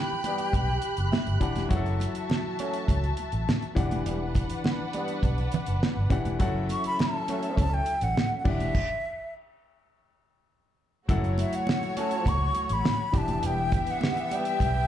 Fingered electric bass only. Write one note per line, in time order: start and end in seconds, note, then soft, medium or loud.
0.54 0.76 B1 medium
0.98 1.09 F#1 medium
1.27 1.38 G1 medium
1.71 2.05 F#1 loud
2.89 3.11 C#2 medium
3.33 3.44 A1 medium
3.77 3.99 E1 medium
4.06 4.39 E1 loud
5.23 5.46 B1 medium
5.68 5.79 F#1 medium
5.97 6.08 G1 medium
6.40 6.73 F#1 loud
7.58 7.80 C#2 medium
8.02 8.13 A1 medium
8.46 8.68 E1 medium
11.09 11.43 F#1 loud
12.26 12.48 C#2 medium
12.70 12.81 A1 medium
13.14 13.36 E1 medium
13.44 13.77 E1 loud
14.61 14.83 B1 medium